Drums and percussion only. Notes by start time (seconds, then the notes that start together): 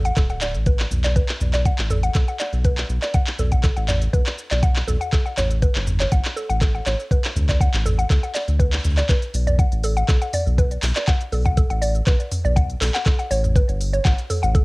0.05 closed hi-hat, shaker
0.17 kick, clap, closed hi-hat, shaker
0.30 closed hi-hat, shaker
0.41 clap, shaker
0.54 closed hi-hat, shaker
0.66 kick, closed hi-hat, shaker
0.79 clap, shaker
0.91 mid tom, shaker
1.04 clap, closed hi-hat, shaker
1.16 kick, closed hi-hat, shaker
1.29 clap, shaker
1.40 mid tom, shaker
1.54 clap, closed hi-hat, shaker
1.66 kick, closed hi-hat, shaker
1.79 clap, shaker
1.90 mid tom, shaker
2.03 closed hi-hat, shaker
2.15 kick, clap, closed hi-hat, shaker
2.28 closed hi-hat, shaker
2.40 clap, shaker
2.53 closed hi-hat, shaker
2.64 kick, closed hi-hat, shaker
2.78 clap, shaker
2.89 shaker
3.02 clap, shaker
3.14 kick, closed hi-hat, shaker
3.27 clap, shaker
3.39 mid tom, shaker
3.52 kick, closed hi-hat, shaker
3.64 kick, clap, closed hi-hat, shaker
3.77 closed hi-hat, shaker
3.89 clap, mid tom, shaker
4.02 closed hi-hat, shaker
4.13 kick, closed hi-hat, shaker
4.26 clap, closed hi-hat, shaker
4.38 shaker
4.51 clap, closed hi-hat, shaker
4.63 kick, closed hi-hat, shaker
4.76 clap, shaker
4.88 mid tom, shaker
5.01 closed hi-hat, shaker
5.13 kick, clap, closed hi-hat, shaker
5.26 shaker
5.37 clap, mid tom, shaker
5.51 closed hi-hat, shaker
5.62 kick, closed hi-hat, shaker
5.75 clap, shaker
5.87 mid tom, shaker
6.00 clap, closed hi-hat, shaker
6.12 kick, closed hi-hat, shaker
6.25 clap, closed hi-hat, shaker
6.37 shaker
6.50 closed hi-hat, shaker
6.62 kick, clap, closed hi-hat, shaker
6.75 shaker
6.86 clap, shaker
7.00 shaker
7.11 kick, closed hi-hat, shaker
7.25 clap, closed hi-hat, shaker
7.36 mid tom, shaker
7.49 kick, clap, closed hi-hat, shaker
7.61 kick, closed hi-hat, shaker
7.74 clap, closed hi-hat, shaker
7.86 mid tom, shaker
7.99 closed hi-hat, shaker
8.10 kick, clap, closed hi-hat, shaker
8.23 closed hi-hat, shaker
8.35 clap, shaker
8.48 closed hi-hat, shaker
8.60 kick, closed hi-hat, shaker
8.73 clap, closed hi-hat, shaker
8.84 mid tom, shaker
8.98 clap, closed hi-hat, shaker
9.09 kick, clap, closed hi-hat, shaker
9.22 closed hi-hat, shaker
9.34 open hi-hat, shaker
9.47 closed hi-hat, mid tom, shaker
9.59 kick, closed hi-hat, shaker
9.72 closed hi-hat, shaker
9.84 open hi-hat, shaker
9.97 closed hi-hat, shaker
10.08 kick, clap, closed hi-hat, shaker
10.21 closed hi-hat, shaker
10.33 mid tom, open hi-hat, shaker
10.47 shaker
10.58 kick, closed hi-hat, shaker
10.71 closed hi-hat, shaker
10.83 clap, open hi-hat, shaker
10.96 clap, closed hi-hat, shaker
11.07 kick, clap, closed hi-hat, shaker
11.21 closed hi-hat, shaker
11.32 open hi-hat, shaker
11.45 kick, closed hi-hat, mid tom, shaker
11.57 kick, closed hi-hat, shaker
11.70 closed hi-hat, shaker
11.82 open hi-hat, shaker
11.95 closed hi-hat, shaker
12.07 kick, clap, closed hi-hat, shaker
12.20 closed hi-hat, shaker
12.32 mid tom, open hi-hat, shaker
12.45 shaker
12.56 kick, closed hi-hat, mid tom, shaker
12.70 closed hi-hat, shaker
12.82 clap, open hi-hat, shaker
12.95 clap, closed hi-hat, shaker
13.06 kick, clap, closed hi-hat, shaker
13.19 closed hi-hat, shaker
13.31 open hi-hat, shaker
13.44 closed hi-hat, mid tom, shaker
13.56 kick, closed hi-hat, shaker
13.69 closed hi-hat, shaker
13.81 open hi-hat, shaker
13.94 closed hi-hat, shaker
14.05 kick, clap, closed hi-hat, shaker
14.18 closed hi-hat, shaker
14.30 mid tom, open hi-hat, shaker
14.43 shaker
14.55 kick, closed hi-hat, shaker